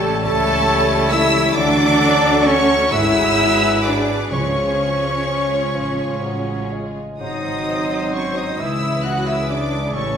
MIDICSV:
0, 0, Header, 1, 13, 480
1, 0, Start_track
1, 0, Tempo, 872093
1, 854, Time_signature, 6, 3, 24, 8
1, 854, Tempo, 916031
1, 1814, Tempo, 950872
1, 4214, Tempo, 902256
1, 5296, End_track
2, 0, Start_track
2, 0, Title_t, "Violin section"
2, 0, Program_c, 0, 48
2, 0, Note_on_c, 0, 81, 113
2, 119, Note_off_c, 0, 81, 0
2, 126, Note_on_c, 0, 81, 127
2, 600, Note_off_c, 0, 81, 0
2, 610, Note_on_c, 0, 88, 124
2, 843, Note_on_c, 0, 86, 125
2, 852, Note_off_c, 0, 88, 0
2, 1325, Note_on_c, 0, 85, 122
2, 1326, Note_off_c, 0, 86, 0
2, 1568, Note_on_c, 0, 88, 121
2, 1571, Note_off_c, 0, 85, 0
2, 2040, Note_on_c, 0, 86, 89
2, 2044, Note_off_c, 0, 88, 0
2, 2280, Note_on_c, 0, 85, 87
2, 2281, Note_off_c, 0, 86, 0
2, 3473, Note_off_c, 0, 85, 0
2, 3736, Note_on_c, 0, 87, 79
2, 4193, Note_off_c, 0, 87, 0
2, 4216, Note_on_c, 0, 85, 83
2, 4338, Note_off_c, 0, 85, 0
2, 4339, Note_on_c, 0, 87, 72
2, 4454, Note_on_c, 0, 88, 90
2, 4460, Note_off_c, 0, 87, 0
2, 4695, Note_on_c, 0, 90, 74
2, 4698, Note_off_c, 0, 88, 0
2, 4818, Note_off_c, 0, 90, 0
2, 4821, Note_on_c, 0, 88, 79
2, 4935, Note_on_c, 0, 86, 80
2, 4940, Note_off_c, 0, 88, 0
2, 5174, Note_off_c, 0, 86, 0
2, 5176, Note_on_c, 0, 85, 80
2, 5296, Note_off_c, 0, 85, 0
2, 5296, End_track
3, 0, Start_track
3, 0, Title_t, "Flute"
3, 0, Program_c, 1, 73
3, 135, Note_on_c, 1, 69, 109
3, 616, Note_on_c, 1, 76, 112
3, 624, Note_off_c, 1, 69, 0
3, 846, Note_off_c, 1, 76, 0
3, 849, Note_on_c, 1, 74, 107
3, 1335, Note_on_c, 1, 73, 94
3, 1343, Note_off_c, 1, 74, 0
3, 1573, Note_off_c, 1, 73, 0
3, 1576, Note_on_c, 1, 76, 112
3, 2038, Note_off_c, 1, 76, 0
3, 2054, Note_on_c, 1, 74, 69
3, 2286, Note_on_c, 1, 73, 75
3, 2293, Note_off_c, 1, 74, 0
3, 3496, Note_off_c, 1, 73, 0
3, 3740, Note_on_c, 1, 75, 73
3, 4226, Note_on_c, 1, 73, 65
3, 4234, Note_off_c, 1, 75, 0
3, 4346, Note_on_c, 1, 75, 64
3, 4354, Note_off_c, 1, 73, 0
3, 4470, Note_on_c, 1, 76, 76
3, 4478, Note_off_c, 1, 75, 0
3, 4705, Note_on_c, 1, 78, 67
3, 4713, Note_off_c, 1, 76, 0
3, 4820, Note_on_c, 1, 76, 69
3, 4828, Note_off_c, 1, 78, 0
3, 4941, Note_on_c, 1, 74, 65
3, 4949, Note_off_c, 1, 76, 0
3, 5175, Note_off_c, 1, 74, 0
3, 5178, Note_on_c, 1, 73, 70
3, 5296, Note_off_c, 1, 73, 0
3, 5296, End_track
4, 0, Start_track
4, 0, Title_t, "Trumpet"
4, 0, Program_c, 2, 56
4, 0, Note_on_c, 2, 69, 101
4, 120, Note_off_c, 2, 69, 0
4, 136, Note_on_c, 2, 69, 108
4, 617, Note_on_c, 2, 76, 99
4, 626, Note_off_c, 2, 69, 0
4, 854, Note_off_c, 2, 76, 0
4, 857, Note_on_c, 2, 74, 111
4, 1333, Note_on_c, 2, 73, 96
4, 1341, Note_off_c, 2, 74, 0
4, 1572, Note_off_c, 2, 73, 0
4, 1575, Note_on_c, 2, 76, 108
4, 2047, Note_on_c, 2, 74, 75
4, 2054, Note_off_c, 2, 76, 0
4, 2284, Note_on_c, 2, 73, 77
4, 2292, Note_off_c, 2, 74, 0
4, 3495, Note_off_c, 2, 73, 0
4, 3740, Note_on_c, 2, 75, 75
4, 4215, Note_on_c, 2, 73, 68
4, 4223, Note_off_c, 2, 75, 0
4, 4334, Note_on_c, 2, 75, 60
4, 4342, Note_off_c, 2, 73, 0
4, 4456, Note_on_c, 2, 76, 68
4, 4464, Note_off_c, 2, 75, 0
4, 4694, Note_off_c, 2, 76, 0
4, 4697, Note_on_c, 2, 78, 69
4, 4816, Note_off_c, 2, 78, 0
4, 4820, Note_on_c, 2, 76, 64
4, 4934, Note_off_c, 2, 76, 0
4, 4937, Note_on_c, 2, 74, 66
4, 5175, Note_on_c, 2, 73, 78
4, 5183, Note_off_c, 2, 74, 0
4, 5296, Note_off_c, 2, 73, 0
4, 5296, End_track
5, 0, Start_track
5, 0, Title_t, "Oboe"
5, 0, Program_c, 3, 68
5, 0, Note_on_c, 3, 73, 82
5, 114, Note_off_c, 3, 73, 0
5, 117, Note_on_c, 3, 73, 93
5, 830, Note_off_c, 3, 73, 0
5, 852, Note_on_c, 3, 69, 104
5, 1486, Note_off_c, 3, 69, 0
5, 1575, Note_on_c, 3, 71, 79
5, 2270, Note_off_c, 3, 71, 0
5, 2283, Note_on_c, 3, 73, 67
5, 3548, Note_off_c, 3, 73, 0
5, 3742, Note_on_c, 3, 72, 63
5, 4462, Note_on_c, 3, 68, 57
5, 4470, Note_off_c, 3, 72, 0
5, 5175, Note_off_c, 3, 68, 0
5, 5178, Note_on_c, 3, 69, 64
5, 5296, Note_off_c, 3, 69, 0
5, 5296, End_track
6, 0, Start_track
6, 0, Title_t, "Violin section"
6, 0, Program_c, 4, 48
6, 0, Note_on_c, 4, 69, 77
6, 122, Note_off_c, 4, 69, 0
6, 133, Note_on_c, 4, 64, 95
6, 853, Note_off_c, 4, 64, 0
6, 860, Note_on_c, 4, 66, 88
6, 1563, Note_off_c, 4, 66, 0
6, 1572, Note_on_c, 4, 68, 86
6, 1574, Note_on_c, 4, 71, 87
6, 2269, Note_off_c, 4, 68, 0
6, 2284, Note_off_c, 4, 71, 0
6, 2294, Note_on_c, 4, 73, 62
6, 2297, Note_on_c, 4, 68, 62
6, 3620, Note_off_c, 4, 68, 0
6, 3638, Note_off_c, 4, 73, 0
6, 3750, Note_on_c, 4, 63, 56
6, 3750, Note_on_c, 4, 72, 59
6, 4443, Note_off_c, 4, 63, 0
6, 4444, Note_off_c, 4, 72, 0
6, 4464, Note_on_c, 4, 71, 60
6, 4466, Note_on_c, 4, 61, 57
6, 5176, Note_off_c, 4, 61, 0
6, 5179, Note_off_c, 4, 71, 0
6, 5181, Note_on_c, 4, 69, 55
6, 5182, Note_on_c, 4, 61, 56
6, 5296, Note_off_c, 4, 61, 0
6, 5296, Note_off_c, 4, 69, 0
6, 5296, End_track
7, 0, Start_track
7, 0, Title_t, "Cello section"
7, 0, Program_c, 5, 48
7, 0, Note_on_c, 5, 57, 99
7, 121, Note_off_c, 5, 57, 0
7, 133, Note_on_c, 5, 57, 101
7, 604, Note_off_c, 5, 57, 0
7, 616, Note_on_c, 5, 64, 101
7, 854, Note_on_c, 5, 62, 118
7, 855, Note_off_c, 5, 64, 0
7, 1322, Note_off_c, 5, 62, 0
7, 1330, Note_on_c, 5, 61, 101
7, 1574, Note_off_c, 5, 61, 0
7, 1577, Note_on_c, 5, 64, 100
7, 2047, Note_on_c, 5, 62, 78
7, 2048, Note_off_c, 5, 64, 0
7, 2284, Note_off_c, 5, 62, 0
7, 2284, Note_on_c, 5, 61, 72
7, 3474, Note_off_c, 5, 61, 0
7, 3741, Note_on_c, 5, 63, 69
7, 4195, Note_off_c, 5, 63, 0
7, 4216, Note_on_c, 5, 61, 69
7, 4337, Note_on_c, 5, 63, 62
7, 4338, Note_off_c, 5, 61, 0
7, 4457, Note_on_c, 5, 64, 66
7, 4459, Note_off_c, 5, 63, 0
7, 4696, Note_on_c, 5, 66, 74
7, 4700, Note_off_c, 5, 64, 0
7, 4818, Note_off_c, 5, 66, 0
7, 4819, Note_on_c, 5, 64, 66
7, 4935, Note_on_c, 5, 62, 69
7, 4939, Note_off_c, 5, 64, 0
7, 5170, Note_off_c, 5, 62, 0
7, 5176, Note_on_c, 5, 61, 80
7, 5296, Note_off_c, 5, 61, 0
7, 5296, End_track
8, 0, Start_track
8, 0, Title_t, "French horn section"
8, 0, Program_c, 6, 60
8, 138, Note_on_c, 6, 57, 107
8, 606, Note_off_c, 6, 57, 0
8, 615, Note_on_c, 6, 64, 108
8, 850, Note_on_c, 6, 62, 113
8, 854, Note_off_c, 6, 64, 0
8, 1328, Note_on_c, 6, 61, 99
8, 1329, Note_off_c, 6, 62, 0
8, 1573, Note_off_c, 6, 61, 0
8, 1573, Note_on_c, 6, 64, 108
8, 2046, Note_off_c, 6, 64, 0
8, 2051, Note_on_c, 6, 62, 71
8, 2280, Note_on_c, 6, 61, 77
8, 2281, Note_off_c, 6, 62, 0
8, 3493, Note_off_c, 6, 61, 0
8, 3736, Note_on_c, 6, 63, 78
8, 4193, Note_off_c, 6, 63, 0
8, 4220, Note_on_c, 6, 61, 66
8, 4333, Note_on_c, 6, 63, 65
8, 4340, Note_off_c, 6, 61, 0
8, 4457, Note_off_c, 6, 63, 0
8, 4458, Note_on_c, 6, 64, 65
8, 4696, Note_off_c, 6, 64, 0
8, 4705, Note_on_c, 6, 66, 73
8, 4818, Note_on_c, 6, 64, 64
8, 4820, Note_off_c, 6, 66, 0
8, 4937, Note_on_c, 6, 62, 67
8, 4938, Note_off_c, 6, 64, 0
8, 5167, Note_on_c, 6, 61, 80
8, 5176, Note_off_c, 6, 62, 0
8, 5296, Note_off_c, 6, 61, 0
8, 5296, End_track
9, 0, Start_track
9, 0, Title_t, "Harp"
9, 0, Program_c, 7, 46
9, 0, Note_on_c, 7, 45, 76
9, 0, Note_on_c, 7, 52, 58
9, 0, Note_on_c, 7, 57, 60
9, 0, Note_on_c, 7, 61, 65
9, 0, Note_on_c, 7, 67, 77
9, 0, Note_on_c, 7, 73, 67
9, 14, Note_on_c, 7, 69, 72
9, 132, Note_off_c, 7, 73, 0
9, 139, Note_on_c, 7, 73, 79
9, 257, Note_on_c, 7, 79, 83
9, 369, Note_off_c, 7, 69, 0
9, 490, Note_off_c, 7, 67, 0
9, 497, Note_on_c, 7, 67, 75
9, 611, Note_off_c, 7, 57, 0
9, 617, Note_on_c, 7, 57, 69
9, 728, Note_off_c, 7, 52, 0
9, 734, Note_on_c, 7, 52, 68
9, 853, Note_on_c, 7, 50, 86
9, 870, Note_off_c, 7, 45, 0
9, 873, Note_off_c, 7, 52, 0
9, 873, Note_off_c, 7, 67, 0
9, 873, Note_off_c, 7, 79, 0
9, 962, Note_off_c, 7, 57, 0
9, 968, Note_on_c, 7, 57, 65
9, 1079, Note_off_c, 7, 61, 0
9, 1208, Note_on_c, 7, 66, 71
9, 1332, Note_on_c, 7, 69, 67
9, 1447, Note_off_c, 7, 73, 0
9, 1575, Note_on_c, 7, 44, 84
9, 1593, Note_off_c, 7, 50, 0
9, 1593, Note_off_c, 7, 57, 0
9, 1594, Note_off_c, 7, 69, 0
9, 1696, Note_on_c, 7, 56, 59
9, 1817, Note_on_c, 7, 59, 59
9, 1935, Note_on_c, 7, 62, 53
9, 2042, Note_off_c, 7, 66, 0
9, 2048, Note_on_c, 7, 66, 54
9, 2168, Note_on_c, 7, 71, 53
9, 2284, Note_on_c, 7, 49, 61
9, 2303, Note_off_c, 7, 44, 0
9, 2304, Note_off_c, 7, 59, 0
9, 2304, Note_off_c, 7, 66, 0
9, 2305, Note_off_c, 7, 62, 0
9, 2305, Note_off_c, 7, 71, 0
9, 2400, Note_off_c, 7, 56, 0
9, 2406, Note_on_c, 7, 56, 40
9, 2525, Note_on_c, 7, 61, 43
9, 2644, Note_on_c, 7, 65, 45
9, 2765, Note_on_c, 7, 68, 49
9, 3004, Note_on_c, 7, 77, 45
9, 3130, Note_on_c, 7, 80, 46
9, 3251, Note_on_c, 7, 73, 47
9, 3366, Note_off_c, 7, 68, 0
9, 3372, Note_on_c, 7, 68, 43
9, 3490, Note_off_c, 7, 61, 0
9, 3496, Note_on_c, 7, 61, 37
9, 3613, Note_off_c, 7, 56, 0
9, 3619, Note_on_c, 7, 56, 37
9, 3738, Note_on_c, 7, 44, 62
9, 3759, Note_off_c, 7, 77, 0
9, 3760, Note_off_c, 7, 49, 0
9, 3760, Note_off_c, 7, 61, 0
9, 3760, Note_off_c, 7, 65, 0
9, 3761, Note_off_c, 7, 73, 0
9, 3860, Note_on_c, 7, 51, 43
9, 3976, Note_off_c, 7, 56, 0
9, 3982, Note_on_c, 7, 56, 44
9, 4218, Note_on_c, 7, 66, 46
9, 4335, Note_off_c, 7, 68, 0
9, 4341, Note_on_c, 7, 68, 45
9, 4465, Note_on_c, 7, 49, 58
9, 4478, Note_off_c, 7, 44, 0
9, 4478, Note_off_c, 7, 51, 0
9, 4481, Note_off_c, 7, 66, 0
9, 4584, Note_on_c, 7, 61, 44
9, 4698, Note_off_c, 7, 56, 0
9, 4705, Note_on_c, 7, 56, 50
9, 4937, Note_off_c, 7, 68, 0
9, 4943, Note_on_c, 7, 68, 46
9, 5064, Note_on_c, 7, 64, 51
9, 5146, Note_off_c, 7, 80, 0
9, 5185, Note_on_c, 7, 45, 60
9, 5197, Note_off_c, 7, 56, 0
9, 5198, Note_off_c, 7, 49, 0
9, 5198, Note_off_c, 7, 68, 0
9, 5296, Note_off_c, 7, 45, 0
9, 5296, Note_off_c, 7, 61, 0
9, 5296, Note_off_c, 7, 64, 0
9, 5296, End_track
10, 0, Start_track
10, 0, Title_t, "Viola section"
10, 0, Program_c, 8, 48
10, 0, Note_on_c, 8, 61, 79
10, 0, Note_on_c, 8, 67, 88
10, 136, Note_off_c, 8, 61, 0
10, 138, Note_off_c, 8, 67, 0
10, 142, Note_on_c, 8, 69, 91
10, 143, Note_on_c, 8, 61, 88
10, 843, Note_off_c, 8, 61, 0
10, 868, Note_on_c, 8, 57, 84
10, 1557, Note_off_c, 8, 69, 0
10, 1568, Note_off_c, 8, 57, 0
10, 1585, Note_on_c, 8, 56, 73
10, 1588, Note_on_c, 8, 68, 78
10, 2289, Note_off_c, 8, 56, 0
10, 2290, Note_off_c, 8, 68, 0
10, 2291, Note_on_c, 8, 65, 60
10, 2294, Note_on_c, 8, 56, 60
10, 3617, Note_off_c, 8, 65, 0
10, 3618, Note_off_c, 8, 56, 0
10, 3746, Note_on_c, 8, 60, 55
10, 3750, Note_on_c, 8, 54, 62
10, 4442, Note_off_c, 8, 60, 0
10, 4443, Note_off_c, 8, 54, 0
10, 4466, Note_on_c, 8, 52, 61
10, 4466, Note_on_c, 8, 56, 57
10, 5166, Note_off_c, 8, 52, 0
10, 5180, Note_off_c, 8, 56, 0
10, 5183, Note_on_c, 8, 52, 56
10, 5183, Note_on_c, 8, 57, 60
10, 5296, Note_off_c, 8, 52, 0
10, 5296, Note_off_c, 8, 57, 0
10, 5296, End_track
11, 0, Start_track
11, 0, Title_t, "Bassoon"
11, 0, Program_c, 10, 70
11, 0, Note_on_c, 10, 55, 81
11, 119, Note_off_c, 10, 55, 0
11, 131, Note_on_c, 10, 55, 98
11, 837, Note_off_c, 10, 55, 0
11, 855, Note_on_c, 10, 54, 95
11, 1554, Note_off_c, 10, 54, 0
11, 1569, Note_on_c, 10, 54, 81
11, 2197, Note_off_c, 10, 54, 0
11, 2283, Note_on_c, 10, 53, 64
11, 2944, Note_off_c, 10, 53, 0
11, 3003, Note_on_c, 10, 53, 61
11, 3245, Note_on_c, 10, 54, 56
11, 3253, Note_off_c, 10, 53, 0
11, 3497, Note_on_c, 10, 56, 50
11, 3505, Note_off_c, 10, 54, 0
11, 3742, Note_off_c, 10, 56, 0
11, 3745, Note_on_c, 10, 54, 60
11, 4456, Note_on_c, 10, 52, 57
11, 4464, Note_off_c, 10, 54, 0
11, 5170, Note_off_c, 10, 52, 0
11, 5173, Note_on_c, 10, 55, 58
11, 5296, Note_off_c, 10, 55, 0
11, 5296, End_track
12, 0, Start_track
12, 0, Title_t, "Timpani"
12, 0, Program_c, 11, 47
12, 2287, Note_on_c, 11, 49, 79
12, 2988, Note_off_c, 11, 49, 0
12, 5296, End_track
13, 0, Start_track
13, 0, Title_t, "Double bass section"
13, 0, Program_c, 12, 48
13, 0, Note_on_c, 12, 33, 81
13, 123, Note_off_c, 12, 33, 0
13, 140, Note_on_c, 12, 37, 90
13, 856, Note_off_c, 12, 37, 0
13, 859, Note_on_c, 12, 38, 95
13, 1563, Note_off_c, 12, 38, 0
13, 1581, Note_on_c, 12, 32, 86
13, 2287, Note_off_c, 12, 32, 0
13, 2289, Note_on_c, 12, 37, 66
13, 2994, Note_off_c, 12, 37, 0
13, 3009, Note_on_c, 12, 33, 55
13, 3635, Note_off_c, 12, 33, 0
13, 3745, Note_on_c, 12, 32, 61
13, 4441, Note_off_c, 12, 32, 0
13, 4464, Note_on_c, 12, 37, 65
13, 5165, Note_off_c, 12, 37, 0
13, 5181, Note_on_c, 12, 33, 64
13, 5296, Note_off_c, 12, 33, 0
13, 5296, End_track
0, 0, End_of_file